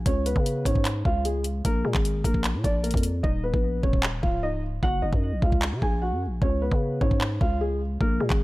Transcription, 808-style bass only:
0, 0, Header, 1, 2, 480
1, 0, Start_track
1, 0, Tempo, 397351
1, 71, Time_signature, 4, 2, 24, 8
1, 10191, End_track
2, 0, Start_track
2, 0, Title_t, "808-style bass"
2, 0, Program_c, 0, 38
2, 71, Note_on_c, 0, 37, 112
2, 417, Note_off_c, 0, 37, 0
2, 432, Note_on_c, 0, 49, 99
2, 777, Note_off_c, 0, 49, 0
2, 791, Note_on_c, 0, 44, 103
2, 1252, Note_off_c, 0, 44, 0
2, 1271, Note_on_c, 0, 37, 108
2, 1962, Note_off_c, 0, 37, 0
2, 1992, Note_on_c, 0, 34, 116
2, 2222, Note_off_c, 0, 34, 0
2, 2231, Note_on_c, 0, 46, 102
2, 2346, Note_off_c, 0, 46, 0
2, 2352, Note_on_c, 0, 32, 97
2, 2697, Note_off_c, 0, 32, 0
2, 2711, Note_on_c, 0, 34, 107
2, 3072, Note_on_c, 0, 46, 101
2, 3090, Note_off_c, 0, 34, 0
2, 3185, Note_off_c, 0, 46, 0
2, 3191, Note_on_c, 0, 34, 105
2, 3537, Note_off_c, 0, 34, 0
2, 3551, Note_on_c, 0, 41, 104
2, 3896, Note_off_c, 0, 41, 0
2, 3912, Note_on_c, 0, 27, 111
2, 4257, Note_off_c, 0, 27, 0
2, 4272, Note_on_c, 0, 34, 97
2, 4617, Note_off_c, 0, 34, 0
2, 4631, Note_on_c, 0, 27, 101
2, 5092, Note_off_c, 0, 27, 0
2, 5111, Note_on_c, 0, 25, 106
2, 5802, Note_off_c, 0, 25, 0
2, 5832, Note_on_c, 0, 30, 114
2, 6062, Note_off_c, 0, 30, 0
2, 6071, Note_on_c, 0, 30, 102
2, 6186, Note_off_c, 0, 30, 0
2, 6192, Note_on_c, 0, 42, 101
2, 6431, Note_on_c, 0, 34, 97
2, 6449, Note_off_c, 0, 42, 0
2, 6545, Note_off_c, 0, 34, 0
2, 6551, Note_on_c, 0, 37, 105
2, 6911, Note_on_c, 0, 49, 104
2, 6929, Note_off_c, 0, 37, 0
2, 7025, Note_off_c, 0, 49, 0
2, 7031, Note_on_c, 0, 34, 108
2, 7391, Note_on_c, 0, 42, 101
2, 7410, Note_off_c, 0, 34, 0
2, 7571, Note_on_c, 0, 34, 97
2, 7590, Note_off_c, 0, 42, 0
2, 7742, Note_off_c, 0, 34, 0
2, 7751, Note_on_c, 0, 37, 115
2, 8097, Note_off_c, 0, 37, 0
2, 8112, Note_on_c, 0, 49, 95
2, 8457, Note_off_c, 0, 49, 0
2, 8470, Note_on_c, 0, 44, 103
2, 8932, Note_off_c, 0, 44, 0
2, 8951, Note_on_c, 0, 37, 103
2, 9642, Note_off_c, 0, 37, 0
2, 9671, Note_on_c, 0, 34, 113
2, 9902, Note_off_c, 0, 34, 0
2, 9911, Note_on_c, 0, 46, 97
2, 10026, Note_off_c, 0, 46, 0
2, 10032, Note_on_c, 0, 32, 100
2, 10191, Note_off_c, 0, 32, 0
2, 10191, End_track
0, 0, End_of_file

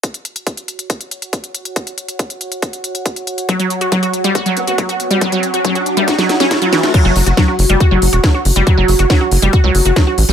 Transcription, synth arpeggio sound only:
0, 0, Header, 1, 2, 480
1, 0, Start_track
1, 0, Tempo, 431655
1, 39, Time_signature, 4, 2, 24, 8
1, 11485, End_track
2, 0, Start_track
2, 0, Title_t, "Synth arpeggio sound"
2, 0, Program_c, 0, 84
2, 3878, Note_on_c, 0, 54, 99
2, 3948, Note_off_c, 0, 54, 0
2, 3999, Note_on_c, 0, 54, 96
2, 4069, Note_off_c, 0, 54, 0
2, 4238, Note_on_c, 0, 66, 76
2, 4309, Note_off_c, 0, 66, 0
2, 4359, Note_on_c, 0, 54, 107
2, 4464, Note_off_c, 0, 54, 0
2, 4478, Note_on_c, 0, 66, 82
2, 4549, Note_off_c, 0, 66, 0
2, 4718, Note_on_c, 0, 55, 101
2, 4789, Note_off_c, 0, 55, 0
2, 4838, Note_on_c, 0, 66, 103
2, 4881, Note_off_c, 0, 66, 0
2, 4958, Note_on_c, 0, 54, 101
2, 5029, Note_off_c, 0, 54, 0
2, 5199, Note_on_c, 0, 66, 75
2, 5269, Note_off_c, 0, 66, 0
2, 5319, Note_on_c, 0, 54, 77
2, 5424, Note_off_c, 0, 54, 0
2, 5439, Note_on_c, 0, 66, 81
2, 5509, Note_off_c, 0, 66, 0
2, 5678, Note_on_c, 0, 55, 97
2, 5749, Note_off_c, 0, 55, 0
2, 5798, Note_on_c, 0, 54, 104
2, 5869, Note_off_c, 0, 54, 0
2, 5918, Note_on_c, 0, 54, 99
2, 5989, Note_off_c, 0, 54, 0
2, 6158, Note_on_c, 0, 66, 79
2, 6229, Note_off_c, 0, 66, 0
2, 6278, Note_on_c, 0, 54, 110
2, 6384, Note_off_c, 0, 54, 0
2, 6398, Note_on_c, 0, 66, 80
2, 6469, Note_off_c, 0, 66, 0
2, 6638, Note_on_c, 0, 55, 107
2, 6709, Note_off_c, 0, 55, 0
2, 6758, Note_on_c, 0, 66, 98
2, 6800, Note_off_c, 0, 66, 0
2, 6878, Note_on_c, 0, 54, 102
2, 6948, Note_off_c, 0, 54, 0
2, 7118, Note_on_c, 0, 61, 103
2, 7160, Note_off_c, 0, 61, 0
2, 7238, Note_on_c, 0, 66, 81
2, 7280, Note_off_c, 0, 66, 0
2, 7358, Note_on_c, 0, 54, 109
2, 7429, Note_off_c, 0, 54, 0
2, 7478, Note_on_c, 0, 52, 100
2, 7549, Note_off_c, 0, 52, 0
2, 7599, Note_on_c, 0, 57, 73
2, 7704, Note_off_c, 0, 57, 0
2, 7718, Note_on_c, 0, 54, 105
2, 7789, Note_off_c, 0, 54, 0
2, 7839, Note_on_c, 0, 54, 107
2, 7909, Note_off_c, 0, 54, 0
2, 8078, Note_on_c, 0, 66, 79
2, 8149, Note_off_c, 0, 66, 0
2, 8198, Note_on_c, 0, 54, 105
2, 8304, Note_off_c, 0, 54, 0
2, 8318, Note_on_c, 0, 66, 80
2, 8388, Note_off_c, 0, 66, 0
2, 8558, Note_on_c, 0, 55, 99
2, 8628, Note_off_c, 0, 55, 0
2, 8678, Note_on_c, 0, 66, 104
2, 8721, Note_off_c, 0, 66, 0
2, 8798, Note_on_c, 0, 54, 104
2, 8869, Note_off_c, 0, 54, 0
2, 9038, Note_on_c, 0, 66, 76
2, 9109, Note_off_c, 0, 66, 0
2, 9158, Note_on_c, 0, 54, 78
2, 9264, Note_off_c, 0, 54, 0
2, 9278, Note_on_c, 0, 66, 79
2, 9349, Note_off_c, 0, 66, 0
2, 9518, Note_on_c, 0, 55, 95
2, 9588, Note_off_c, 0, 55, 0
2, 9638, Note_on_c, 0, 54, 103
2, 9709, Note_off_c, 0, 54, 0
2, 9758, Note_on_c, 0, 54, 107
2, 9829, Note_off_c, 0, 54, 0
2, 9998, Note_on_c, 0, 66, 82
2, 10068, Note_off_c, 0, 66, 0
2, 10118, Note_on_c, 0, 54, 108
2, 10223, Note_off_c, 0, 54, 0
2, 10238, Note_on_c, 0, 66, 78
2, 10309, Note_off_c, 0, 66, 0
2, 10478, Note_on_c, 0, 55, 97
2, 10549, Note_off_c, 0, 55, 0
2, 10599, Note_on_c, 0, 66, 100
2, 10641, Note_off_c, 0, 66, 0
2, 10718, Note_on_c, 0, 54, 107
2, 10789, Note_off_c, 0, 54, 0
2, 10959, Note_on_c, 0, 66, 80
2, 11029, Note_off_c, 0, 66, 0
2, 11079, Note_on_c, 0, 54, 78
2, 11184, Note_off_c, 0, 54, 0
2, 11199, Note_on_c, 0, 66, 79
2, 11269, Note_off_c, 0, 66, 0
2, 11439, Note_on_c, 0, 55, 99
2, 11485, Note_off_c, 0, 55, 0
2, 11485, End_track
0, 0, End_of_file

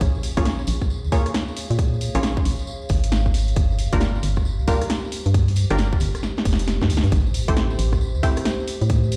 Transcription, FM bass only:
0, 0, Header, 1, 2, 480
1, 0, Start_track
1, 0, Tempo, 444444
1, 11, Time_signature, 4, 2, 24, 8
1, 9898, End_track
2, 0, Start_track
2, 0, Title_t, "FM bass"
2, 0, Program_c, 0, 39
2, 11, Note_on_c, 0, 34, 94
2, 351, Note_off_c, 0, 34, 0
2, 401, Note_on_c, 0, 34, 92
2, 701, Note_off_c, 0, 34, 0
2, 732, Note_on_c, 0, 34, 98
2, 1121, Note_on_c, 0, 39, 99
2, 1137, Note_off_c, 0, 34, 0
2, 1192, Note_off_c, 0, 39, 0
2, 1841, Note_on_c, 0, 46, 93
2, 2271, Note_off_c, 0, 46, 0
2, 2321, Note_on_c, 0, 34, 96
2, 2621, Note_off_c, 0, 34, 0
2, 2649, Note_on_c, 0, 34, 98
2, 2769, Note_off_c, 0, 34, 0
2, 3130, Note_on_c, 0, 32, 96
2, 3820, Note_off_c, 0, 32, 0
2, 3850, Note_on_c, 0, 31, 98
2, 4190, Note_off_c, 0, 31, 0
2, 4240, Note_on_c, 0, 31, 95
2, 4540, Note_off_c, 0, 31, 0
2, 4570, Note_on_c, 0, 31, 94
2, 4960, Note_on_c, 0, 36, 103
2, 4977, Note_off_c, 0, 31, 0
2, 5032, Note_off_c, 0, 36, 0
2, 5681, Note_on_c, 0, 43, 89
2, 6111, Note_off_c, 0, 43, 0
2, 6162, Note_on_c, 0, 31, 94
2, 6461, Note_off_c, 0, 31, 0
2, 6492, Note_on_c, 0, 31, 96
2, 6610, Note_off_c, 0, 31, 0
2, 6971, Note_on_c, 0, 29, 98
2, 7355, Note_off_c, 0, 29, 0
2, 7361, Note_on_c, 0, 43, 83
2, 7450, Note_on_c, 0, 38, 104
2, 7466, Note_off_c, 0, 43, 0
2, 7569, Note_off_c, 0, 38, 0
2, 7599, Note_on_c, 0, 43, 105
2, 7671, Note_off_c, 0, 43, 0
2, 7690, Note_on_c, 0, 33, 99
2, 8031, Note_off_c, 0, 33, 0
2, 8081, Note_on_c, 0, 33, 92
2, 8381, Note_off_c, 0, 33, 0
2, 8410, Note_on_c, 0, 33, 98
2, 8800, Note_on_c, 0, 38, 104
2, 8817, Note_off_c, 0, 33, 0
2, 8872, Note_off_c, 0, 38, 0
2, 9520, Note_on_c, 0, 45, 87
2, 9898, Note_off_c, 0, 45, 0
2, 9898, End_track
0, 0, End_of_file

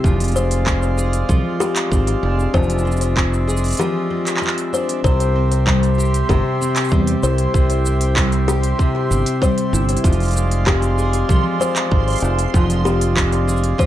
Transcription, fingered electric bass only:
0, 0, Header, 1, 2, 480
1, 0, Start_track
1, 0, Key_signature, 0, "major"
1, 0, Tempo, 625000
1, 32, Time_signature, 4, 2, 24, 8
1, 10646, End_track
2, 0, Start_track
2, 0, Title_t, "Fingered electric bass"
2, 0, Program_c, 0, 33
2, 32, Note_on_c, 0, 29, 92
2, 940, Note_off_c, 0, 29, 0
2, 993, Note_on_c, 0, 36, 81
2, 1080, Note_off_c, 0, 36, 0
2, 1471, Note_on_c, 0, 32, 85
2, 1647, Note_off_c, 0, 32, 0
2, 1711, Note_on_c, 0, 29, 103
2, 1887, Note_off_c, 0, 29, 0
2, 1952, Note_on_c, 0, 29, 95
2, 2861, Note_off_c, 0, 29, 0
2, 3872, Note_on_c, 0, 36, 99
2, 4780, Note_off_c, 0, 36, 0
2, 4832, Note_on_c, 0, 31, 84
2, 4920, Note_off_c, 0, 31, 0
2, 5312, Note_on_c, 0, 40, 77
2, 5488, Note_off_c, 0, 40, 0
2, 5553, Note_on_c, 0, 36, 94
2, 5728, Note_off_c, 0, 36, 0
2, 5792, Note_on_c, 0, 36, 93
2, 6700, Note_off_c, 0, 36, 0
2, 6994, Note_on_c, 0, 31, 81
2, 7081, Note_off_c, 0, 31, 0
2, 7472, Note_on_c, 0, 31, 105
2, 7647, Note_off_c, 0, 31, 0
2, 7712, Note_on_c, 0, 29, 92
2, 8621, Note_off_c, 0, 29, 0
2, 8672, Note_on_c, 0, 36, 81
2, 8760, Note_off_c, 0, 36, 0
2, 9151, Note_on_c, 0, 32, 81
2, 9327, Note_off_c, 0, 32, 0
2, 9387, Note_on_c, 0, 29, 108
2, 9565, Note_off_c, 0, 29, 0
2, 9631, Note_on_c, 0, 29, 99
2, 10540, Note_off_c, 0, 29, 0
2, 10646, End_track
0, 0, End_of_file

